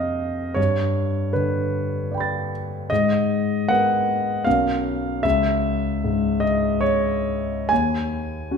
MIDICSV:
0, 0, Header, 1, 2, 480
1, 0, Start_track
1, 0, Tempo, 768246
1, 358, Time_signature, 3, 2, 24, 8
1, 1320, Tempo, 783290
1, 3720, Tempo, 792602
1, 4200, Tempo, 878477
1, 4680, Tempo, 813008
1, 5196, End_track
2, 0, Start_track
2, 0, Title_t, "Grand piano"
2, 0, Program_c, 0, 0
2, 0, Control_c, 0, 64, 127
2, 0, Note_on_c, 0, 41, 36
2, 0, Note_on_c, 0, 48, 27
2, 0, Note_on_c, 0, 75, 59
2, 0, Note_on_c, 0, 77, 58
2, 0, Note_on_c, 0, 79, 59
2, 329, Note_off_c, 0, 41, 0
2, 340, Note_on_c, 0, 73, 60
2, 350, Note_off_c, 0, 75, 0
2, 350, Note_on_c, 0, 43, 35
2, 354, Note_off_c, 0, 48, 0
2, 368, Control_c, 0, 64, 0
2, 372, Note_off_c, 0, 79, 0
2, 374, Note_off_c, 0, 77, 0
2, 462, Control_c, 0, 64, 127
2, 828, Note_off_c, 0, 73, 0
2, 831, Note_on_c, 0, 71, 51
2, 842, Note_on_c, 0, 50, 28
2, 1322, Note_on_c, 0, 74, 26
2, 1339, Note_on_c, 0, 79, 25
2, 1358, Note_on_c, 0, 83, 25
2, 1376, Note_on_c, 0, 93, 27
2, 1558, Note_off_c, 0, 71, 0
2, 1775, Note_off_c, 0, 43, 0
2, 1779, Note_off_c, 0, 74, 0
2, 1788, Note_off_c, 0, 79, 0
2, 1797, Note_off_c, 0, 83, 0
2, 1801, Note_on_c, 0, 75, 68
2, 1806, Note_off_c, 0, 50, 0
2, 1807, Note_off_c, 0, 93, 0
2, 1813, Control_c, 0, 64, 0
2, 1813, Note_on_c, 0, 44, 39
2, 1908, Control_c, 0, 64, 127
2, 2284, Note_on_c, 0, 78, 70
2, 2285, Note_off_c, 0, 75, 0
2, 2291, Note_on_c, 0, 59, 29
2, 2294, Note_on_c, 0, 70, 33
2, 2735, Note_off_c, 0, 59, 0
2, 2736, Note_off_c, 0, 70, 0
2, 2737, Note_off_c, 0, 44, 0
2, 2749, Note_on_c, 0, 77, 69
2, 2756, Note_off_c, 0, 78, 0
2, 2762, Note_on_c, 0, 61, 27
2, 2764, Note_on_c, 0, 35, 37
2, 2764, Note_on_c, 0, 70, 30
2, 2767, Control_c, 0, 64, 0
2, 2877, Control_c, 0, 64, 127
2, 3216, Note_off_c, 0, 61, 0
2, 3218, Note_off_c, 0, 70, 0
2, 3227, Note_off_c, 0, 35, 0
2, 3230, Note_on_c, 0, 76, 72
2, 3234, Note_off_c, 0, 77, 0
2, 3240, Note_on_c, 0, 37, 41
2, 3248, Control_c, 0, 64, 0
2, 3341, Control_c, 0, 64, 127
2, 3729, Note_on_c, 0, 44, 31
2, 3945, Note_on_c, 0, 75, 63
2, 3955, Note_off_c, 0, 76, 0
2, 4190, Note_on_c, 0, 73, 69
2, 4195, Note_off_c, 0, 75, 0
2, 4661, Note_off_c, 0, 37, 0
2, 4673, Note_on_c, 0, 80, 76
2, 4677, Note_off_c, 0, 73, 0
2, 4685, Note_off_c, 0, 44, 0
2, 4685, Note_on_c, 0, 39, 39
2, 4692, Control_c, 0, 64, 0
2, 4814, Control_c, 0, 64, 127
2, 5159, Note_on_c, 0, 61, 32
2, 5161, Note_on_c, 0, 66, 33
2, 5196, Note_off_c, 0, 39, 0
2, 5196, Note_off_c, 0, 61, 0
2, 5196, Note_off_c, 0, 66, 0
2, 5196, Note_off_c, 0, 80, 0
2, 5196, End_track
0, 0, End_of_file